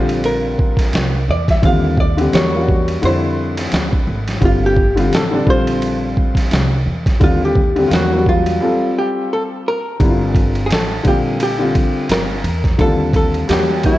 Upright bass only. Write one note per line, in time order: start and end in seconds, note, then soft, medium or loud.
0.00 0.55 A#1 medium
0.93 1.26 C2 medium
1.28 1.61 E2 medium
1.63 2.29 D#2 loud
2.33 2.99 E2 medium
3.03 3.69 F2 medium
3.73 4.06 D2 medium
4.07 4.40 G#1 medium
4.42 5.08 G1 loud
5.12 5.45 A1 medium
5.47 6.13 A#1 medium
6.51 6.85 C2 loud
6.86 7.19 E2 medium
7.21 7.87 D#2 loud
7.91 8.57 E2 medium
10.00 10.66 G1 loud
10.70 11.03 A1 medium
11.05 11.71 A#1 medium
12.10 12.43 G1 medium
12.44 12.77 E2 medium
12.79 13.45 D#2 loud
13.49 13.98 E2 medium